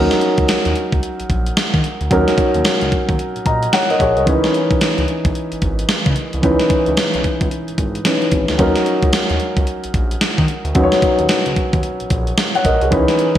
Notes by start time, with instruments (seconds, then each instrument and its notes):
Already playing: grand piano F#3 C#4 D#4 A#4
0.11 snare, closed hi-hat
0.21 closed hi-hat
0.38 analog synth bass C#2, kick, closed hi-hat
0.48 snare, closed hi-hat
0.65 analog synth bass D#2, closed hi-hat
0.76 closed hi-hat
0.92 analog synth bass C#2, kick, closed hi-hat
1.03 closed hi-hat
1.20 analog synth bass A#1, closed hi-hat
1.30 analog synth bass A#1, kick, closed hi-hat
1.46 closed hi-hat
1.57 snare, closed hi-hat
1.74 analog synth bass D#3, kick, closed hi-hat
1.84 closed hi-hat
2.01 analog synth bass D2, closed hi-hat
2.10 analog synth bass D#2, grand piano F#3 C#4 D#4 A#4, kick, closed hi-hat
2.28 snare, closed hi-hat
2.38 kick, closed hi-hat
2.54 analog synth bass D#2, closed hi-hat
2.65 snare, closed hi-hat
2.81 analog synth bass C#2, closed hi-hat
2.92 kick, closed hi-hat
3.09 analog synth bass D#2, kick, closed hi-hat
3.19 closed hi-hat
3.36 analog synth bass A#1, closed hi-hat
3.46 analog synth bass A#1, grand piano D#5 A#5, kick, closed hi-hat
3.63 closed hi-hat
3.73 grand piano C#5 F#5, snare, closed hi-hat
3.90 grand piano A#4 D#5, closed hi-hat
4.00 analog synth bass A#1, grand piano G#4 C#5, kick, closed hi-hat
4.17 analog synth bass C2, grand piano A#4 D#5, closed hi-hat
4.26 analog synth bass C#2, grand piano E3 C#4 D#4 B4, kick, closed hi-hat
4.44 snare, closed hi-hat
4.54 closed hi-hat
4.71 analog synth bass B1, kick, closed hi-hat
4.81 snare, closed hi-hat
4.98 analog synth bass C#2, closed hi-hat
5.08 closed hi-hat
5.25 analog synth bass B1, kick, closed hi-hat
5.35 closed hi-hat
5.52 analog synth bass G#1, closed hi-hat
5.62 analog synth bass G#1, kick, closed hi-hat
5.79 closed hi-hat
5.89 snare, closed hi-hat
6.06 analog synth bass C#3, kick, closed hi-hat
6.16 closed hi-hat
6.33 analog synth bass C2, closed hi-hat
6.42 analog synth bass C#2, grand piano E3 C#4 D#4 B4, kick, closed hi-hat
6.59 snare, closed hi-hat
6.70 kick, closed hi-hat
6.86 analog synth bass C#2, closed hi-hat
6.97 snare, closed hi-hat
7.14 analog synth bass B1, closed hi-hat
7.24 kick, closed hi-hat
7.41 analog synth bass C#2, kick, closed hi-hat
7.51 closed hi-hat
7.68 analog synth bass G#1, closed hi-hat
7.78 analog synth bass G#1, kick, closed hi-hat
7.95 closed hi-hat
8.05 grand piano E3 C#4 D#4 B4, snare, closed hi-hat
8.22 closed hi-hat
8.31 analog synth bass G#1, kick, closed hi-hat
8.48 analog synth bass D2, snare, closed hi-hat
8.58 analog synth bass D#2, grand piano F#3 C#4 D#4 A#4, kick, closed hi-hat
8.76 snare, closed hi-hat
8.86 closed hi-hat
9.02 analog synth bass C#2, kick, closed hi-hat
9.13 snare, closed hi-hat
9.29 analog synth bass D#2, closed hi-hat
9.40 closed hi-hat
9.57 analog synth bass C#2, kick, closed hi-hat
9.67 closed hi-hat
9.84 analog synth bass A#1, closed hi-hat
9.94 analog synth bass A#1, kick, closed hi-hat
10.11 closed hi-hat
10.21 snare, closed hi-hat
10.38 analog synth bass D#3, kick, closed hi-hat
10.48 closed hi-hat
10.65 analog synth bass D2, closed hi-hat
10.74 analog synth bass D#2, grand piano F#3 C#4 D#4 B4, kick, closed hi-hat
10.83 grand piano C#5
10.92 snare, closed hi-hat
11.02 kick, closed hi-hat
11.19 analog synth bass D#2, closed hi-hat
11.29 snare, closed hi-hat
11.46 analog synth bass C#2, closed hi-hat
11.56 kick, closed hi-hat
11.73 analog synth bass D#2, kick, closed hi-hat
11.83 closed hi-hat
12.00 analog synth bass A#1, closed hi-hat
12.10 analog synth bass A#1, kick, closed hi-hat
12.27 closed hi-hat
12.38 snare, closed hi-hat
12.55 grand piano C#5 F#5, closed hi-hat
12.65 analog synth bass A#1, grand piano A#4 D#5, kick, closed hi-hat
12.81 analog synth bass C2, grand piano G#4 C#5, closed hi-hat
12.91 analog synth bass C#2, grand piano E3 C#4 D#4 B4, kick, closed hi-hat
13.08 snare, closed hi-hat
13.19 closed hi-hat